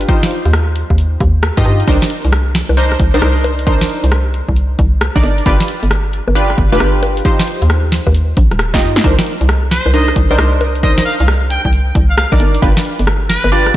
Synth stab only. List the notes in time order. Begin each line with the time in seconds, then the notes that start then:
0.08 D#4 F4 G4 C5
1.57 D#4 F4 G4 D#5
1.88 D4 D#4 A#4 C5
2.77 D4 D#4 A#4 C5
3.14 D4 D#4 A#4 C5
3.67 D4 D#4 A#4 C5
5.16 D4 D#4 A#4 D5
5.46 D4 F4 G4 B4
6.35 D4 F4 G4 B4
6.72 D4 F4 G4 B4
7.25 D#4 F4 G4 C5
8.74 D#4 F4 G4 D#5
9.04 D4 D#4 A#4 C5
9.94 D4 D#4 A#4 C5
10.31 D4 D#4 A#4 C5
10.83 D4 D#4 A#4 C5
12.32 D4 D#4 A#4 D5
12.62 D4 F4 G4 B4
13.52 D4 F4 G4 B4